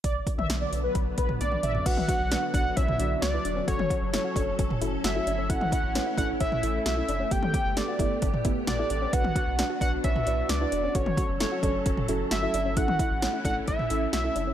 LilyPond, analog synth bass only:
\new Staff \with { instrumentName = "Analog synth bass" } { \clef bass \time 4/4 \key b \minor \tempo 4 = 132 b,,8 r16 b,,16 b,,8 b,,8 b,,8 b,,8 b,,8 a,,8 | b,,8 r16 b,,8 r16 b,,8 b,,8 b,,8 cis,8 e,,8 | fis,,8 r16 fis,,8 r16 fis,,8 fis,,8 fis,,8 g,,8 g,,8 | a,,8 r16 a,,8 r16 a,,8 a,,8 a,,8 b,,8 fis,,8 |
g,,8 r16 g,,8 r16 g,,8 g,,8 g,,8 a,,8 a,,8 | b,,8 r16 b,,8 r16 b,,8 b,,8 b,,8 cis,8 e,,8 | fis,,8 r16 fis,,8 r16 fis,,8 fis,,8 fis,,8 g,,8 g,,8 | a,,8 r16 a,,8 r16 a,,8 a,,8 a,,8 b,,8 fis,,8 | }